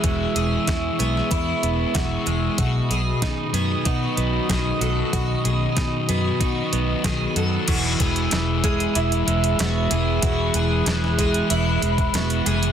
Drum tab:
CC |----------------|----------------|----------------|x---------------|
HH |x-x-x-x-x-x-x-x-|x-x-x-x-x-x-x-x-|x-x-x-x-x-x-x-x-|x-xxx-xxxxxxx-x-|
SD |----o--o----o---|----o-------o---|----o-------o---|----o-------o---|
BD |o---o---o---o---|o---o---o---o---|o---o---o---o---|o-o---o---------|

CC |----------------|
HH |x-x-x-xxx-xxxxxx|
SD |----oo------o---|
BD |o-----o----o----|